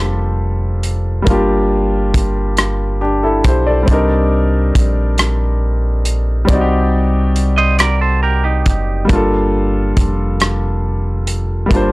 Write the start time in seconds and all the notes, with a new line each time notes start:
Already playing: F1 G3 A#3 D4 F4 A4
0.83 closed hi-hat
1.22 G3 A#3
1.27 G1 D4 F4, kick, closed hi-hat
1.32 G4
2.14 kick, closed hi-hat
2.57 cross-stick, closed hi-hat
3.01 D4 G4
3.23 E4 A4
3.44 B1 G4 C5, kick, closed hi-hat
3.67 A4 D5
3.83 G3 C4
3.88 C2 D4 D#4, kick, closed hi-hat
3.93 A#4
4.75 A#1, kick, closed hi-hat
5.18 cross-stick, closed hi-hat
6.05 closed hi-hat
6.45 G3 C4, kick, closed hi-hat
6.49 C2 D#4 D5
6.55 F#4
6.61 G4
7.36 closed hi-hat
7.58 C5 D#5
7.79 A#4 D5, cross-stick, closed hi-hat
8.01 A4 C5
8.23 G4 A#4
8.44 D#4 G4
8.66 F#1, kick, closed hi-hat
9.05 G3 A#3
9.09 G1 D4 F4, kick, closed hi-hat
9.15 A4
9.97 F1, kick, closed hi-hat
10.40 cross-stick, closed hi-hat
11.27 closed hi-hat
11.66 G3 A#3
11.71 G1 D4 F4, kick, closed hi-hat
11.76 C5